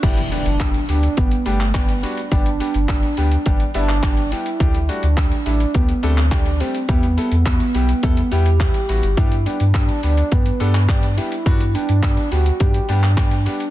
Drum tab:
CC |x---------------|----------------|----------------|----------------|
HH |xxoxxxoxxxoxxxox|xxoxxxoxxxoxxxox|xxoxxxoxxxoxxxox|xxoxxxoxxxoxxxox|
SH |xxxxxxxxxxxxxxxx|xxxxxxxxxxxxxxxx|xxxxxxxxxxxxxxxx|xxxxxxxxxxxxxxxx|
CP |----x------xx---|----x------xx---|----x------xx---|----x-------x---|
BD |o---o---o---o---|o---o---o---o---|o---o---o---o---|o---o---o---o---|

CC |----------------|----------------|
HH |xxoxxxoxxxoxxxox|xxoxxxoxxxoxxxox|
SH |xxxxxxxxxxxxxxxx|xxxxxxxxxxxxxxxx|
CP |----x------xx---|----x------xx---|
BD |o---o---o---o---|o---o---o---o---|